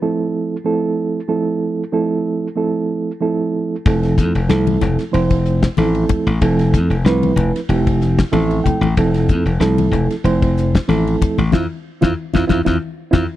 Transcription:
0.02 F3 A3 C4 E4 A4
0.65 F3 A3 C4 E4 A4
1.28 F3 A3 C4 E4 A4
1.92 F3 A3 C4 E4 A4
2.56 F3 A3 C4 E4 A4
3.20 F3 A3 C4 E4 A4
3.86 F1 F3 A3 C4 E4 A4, kick, ride
4.03 snare, ride
4.18 F2, kick, snare, hi-hat pedal
4.35 F1, ride
4.48 C2 F3 A3 C4 E4 A4, snare, ride
4.67 ride, high conga
4.81 F1, snare, hi-hat pedal, low conga
4.99 snare, ride
5.12 F1 F3 A3 C4 E4 C5, ride
5.30 kick, ride
5.45 hi-hat pedal
5.62 kick, snare, ride
5.77 A1 F3 A3 C4 E4 A4, snare, ride, high conga
5.95 ride
6.09 kick, hi-hat pedal, low conga
6.27 A1, ride
6.41 F1 F3 A3 C4 E4 A4, kick, ride
6.59 snare, ride
6.74 F2, kick, snare, hi-hat pedal
6.90 F1, ride
7.04 C2 F3 A3 C4 E4 B4, snare, ride
7.23 ride, high conga
7.36 F1, hi-hat pedal, low conga
7.56 snare, ride
7.69 F1 F3 A3 C4 E4 G4, ride
7.87 kick, ride
8.01 snare, hi-hat pedal
8.18 kick, snare, ride
8.32 A1 F3 A3 C4 E4 A4 E5, snare, ride, high conga
8.51 ride
8.64 G5, kick, hi-hat pedal, low conga
8.81 A1, ride, high conga
8.97 F1 F3 A3 C4 E4 A4, kick, ride
9.14 snare, ride
9.28 F2, kick, hi-hat pedal
9.45 F1, ride
9.60 C2 F3 A3 C4 E4 A4, snare, ride
9.78 ride, high conga
9.91 F1, hi-hat pedal, low conga
10.10 snare, ride
10.24 F1 F3 A3 C4 E4 C5, ride
10.42 kick, ride
10.57 snare, hi-hat pedal
10.75 kick, snare, ride
10.88 A1 F3 A3 C4 E4 A4, snare, ride, high conga
11.07 ride
11.22 kick, hi-hat pedal, low conga
11.38 A1, ride, high conga
11.52 F2 C4 E4 F4, kick, snare, high conga
12.01 F2 C4 E4 F4, kick, snare, high conga
12.33 F2 C4 E4 F4, kick, snare, high conga
12.47 F2 C4 E4 F4, kick, snare, high conga
12.65 F2 C4 E4 F4, kick, snare, high conga
13.11 F2 C4 E4 F4, kick, snare, high conga

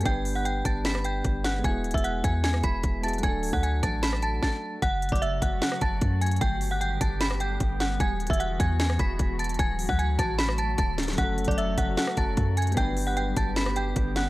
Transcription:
0.00 G3 B3, closed hi-hat
0.05 G1 D4 G4 G5 G6, kick, closed hi-hat
0.11 B4
0.25 open hi-hat
0.35 F#5 F#6
0.45 G5 G6, closed hi-hat
0.65 G1 A5 A6, kick, closed hi-hat
0.85 B5 B6, snare, closed hi-hat
0.95 cross-stick
1.04 G5 G6, closed hi-hat
1.25 G1, kick, closed hi-hat
1.44 F#5 F#6, snare, closed hi-hat
1.59 G#3 B3
1.64 E1 E4 F#4 G#5 G#6, kick, closed hi-hat
1.70 G#4
1.84 D1, closed hi-hat
1.91 E1 E5 E6, kick, closed hi-hat
1.98 closed hi-hat
2.04 F#5 F#6, closed hi-hat
2.24 E2 G#5 G#6, kick, closed hi-hat
2.44 G#5 G#6, snare, closed hi-hat
2.54 cross-stick
2.63 E1 B5 B6, kick, closed hi-hat
2.83 E1, kick, closed hi-hat
3.01 G#3 B3 E4 F#4 A5 A6, closed hi-hat
3.06 G#4, closed hi-hat
3.13 closed hi-hat
3.18 F#3 A3, closed hi-hat
3.23 D1 D4 F#4 G#5 G#6, kick, closed hi-hat
3.28 A4
3.43 open hi-hat
3.53 D2 F#5 F#6, kick
3.63 G#5 G#6, closed hi-hat
3.83 A1 A5 A6, kick, cross-stick, closed hi-hat
4.03 B5 B6, snare, closed hi-hat
4.13 cross-stick
4.22 A5 A6, closed hi-hat
4.43 A5 A6, kick, snare
4.82 F#1 C#3 F#3 A3 F#4 F#5 F#6, kick, closed hi-hat
5.02 closed hi-hat
5.09 F#1 D5, kick, closed hi-hat
5.13 D6, closed hi-hat
5.22 E5 E6, closed hi-hat
5.42 F#1 F#5 F#6, kick, closed hi-hat
5.62 F#5 F#6, snare, closed hi-hat
5.72 cross-stick
5.81 F#1 A5 A6, kick, closed hi-hat
6.01 F#2, kick, closed hi-hat
6.21 G#5 G#6, closed hi-hat
6.26 closed hi-hat
6.31 closed hi-hat
6.36 closed hi-hat
6.41 G1 D3 G3 B3 G4 G5 G6, kick, closed hi-hat
6.61 open hi-hat
6.71 F#5 F#6
6.81 G5 G6, closed hi-hat
7.01 G1 A5 A6, kick, closed hi-hat
7.21 B5 B6, snare, closed hi-hat
7.31 cross-stick
7.40 G5 G6, closed hi-hat
7.60 G1, kick, closed hi-hat
7.80 F#5 F#6, snare, closed hi-hat
8.00 E1 E3 G#3 F#4 G#5 G#6, kick, closed hi-hat
8.20 D1, closed hi-hat
8.27 E1 E5 E6, kick, closed hi-hat
8.33 closed hi-hat
8.40 F#5 F#6, closed hi-hat
8.60 E2 G#5 G#6, kick, closed hi-hat
8.80 G#5 G#6, snare, closed hi-hat
8.90 cross-stick
8.99 E1 B5 B6, kick, closed hi-hat
9.19 E1, kick, closed hi-hat
9.39 A5 A6, closed hi-hat
9.44 closed hi-hat
9.49 closed hi-hat
9.54 closed hi-hat
9.59 D1 D3 F#3 A3 G#5 G#6, kick, closed hi-hat
9.79 open hi-hat
9.89 D2 F#5 F#6, kick
9.99 G#5 G#6, closed hi-hat
10.19 A1 A5 A6, kick, cross-stick, closed hi-hat
10.38 B5 B6, snare, closed hi-hat
10.49 cross-stick
10.58 A5 A6, closed hi-hat
10.78 D1 A5 A6, kick, closed hi-hat
10.98 snare, closed hi-hat
11.03 closed hi-hat
11.08 snare, closed hi-hat
11.13 F#3 A3, closed hi-hat
11.18 F#1 C#3 F#3 C#4 F#4 F#5 F#6, kick, closed hi-hat
11.24 A4
11.38 closed hi-hat
11.45 F#1 D5, kick, closed hi-hat
11.49 D6, closed hi-hat
11.58 E5 E6, closed hi-hat
11.78 F#1 F#5 F#6, kick, closed hi-hat
11.97 F#5 F#6, snare, closed hi-hat
12.07 cross-stick
12.17 F#1 A5 A6, kick, closed hi-hat
12.37 F#2, kick, closed hi-hat
12.57 G#5 G#6, closed hi-hat
12.62 closed hi-hat
12.67 closed hi-hat
12.72 G3 B3, closed hi-hat
12.77 G1 D3 G3 B3 D4 G4 G5 G6, kick, closed hi-hat
12.82 B4
12.97 open hi-hat
13.07 F#5 F#6
13.17 G5 G6, closed hi-hat
13.37 G1 A5 A6, kick, closed hi-hat
13.56 B5 B6, snare, closed hi-hat
13.66 cross-stick
13.76 G5 G6, closed hi-hat
13.96 G1, kick, closed hi-hat
14.16 F#5 F#6, snare, closed hi-hat

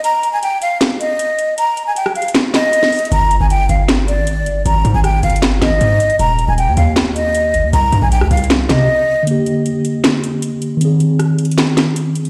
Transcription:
0.04 A#5, closed hi-hat
0.23 closed hi-hat
0.33 G#5
0.42 G5, closed hi-hat
0.62 F5, closed hi-hat
0.81 snare, clap, closed hi-hat
1.00 D#5, closed hi-hat
1.19 closed hi-hat
1.39 closed hi-hat
1.58 A#5, closed hi-hat
1.77 closed hi-hat
1.87 G#5
1.96 G5, closed hi-hat
2.06 cross-stick
2.15 F5, closed hi-hat, open hi-hat
2.22 closed hi-hat
2.28 closed hi-hat
2.35 snare, clap, closed hi-hat
2.54 D#5, snare, clap, closed hi-hat
2.73 closed hi-hat
2.83 snare
2.92 closed hi-hat, open hi-hat
2.99 closed hi-hat
3.05 closed hi-hat
3.12 G1 A#5, closed hi-hat
3.31 closed hi-hat
3.40 G1 G#5
3.50 G5, closed hi-hat
3.69 G1 F5, closed hi-hat
3.89 snare, clap, closed hi-hat
4.08 D5, closed hi-hat
4.17 G#1
4.27 closed hi-hat
4.41 G1
4.46 closed hi-hat
4.65 G#1 A#5, closed hi-hat
4.85 G#2, closed hi-hat
4.94 G#1 G#5
5.04 G5, cross-stick, closed hi-hat
5.23 G1 F5, closed hi-hat, open hi-hat
5.30 closed hi-hat
5.36 closed hi-hat
5.42 snare, clap, closed hi-hat
5.62 G#1 D#5, snare, clap, closed hi-hat
5.81 G#2, closed hi-hat
6.00 closed hi-hat
6.10 closed hi-hat
6.19 D#1 A#5, closed hi-hat
6.39 closed hi-hat
6.48 D#1 G#5
6.58 G5, closed hi-hat
6.67 D#2
6.77 D#2 F5, closed hi-hat
6.96 snare, clap, closed hi-hat
7.15 D#5, closed hi-hat
7.35 closed hi-hat
7.54 G1, closed hi-hat
7.64 D#2
7.73 C2 A#5, closed hi-hat
7.92 G2, closed hi-hat
8.02 A#1 G#5
8.12 G5, closed hi-hat
8.21 D2, cross-stick
8.31 C2 F5, closed hi-hat, open hi-hat
8.37 closed hi-hat
8.44 closed hi-hat
8.50 snare, clap, closed hi-hat
8.69 C3 D#5, snare, clap, closed hi-hat
9.23 D3
9.27 A#3, closed hi-hat
9.31 G4
9.46 closed hi-hat
9.66 closed hi-hat
9.85 closed hi-hat
10.04 snare, clap, closed hi-hat
10.24 closed hi-hat
10.42 closed hi-hat
10.62 closed hi-hat
10.77 D#3
10.81 C4, closed hi-hat
10.85 G#4
11.00 closed hi-hat
11.19 cross-stick, closed hi-hat
11.38 closed hi-hat, open hi-hat
11.45 closed hi-hat
11.51 closed hi-hat
11.58 snare, clap, closed hi-hat
11.77 snare, clap, closed hi-hat
11.96 closed hi-hat
12.15 closed hi-hat
12.25 closed hi-hat

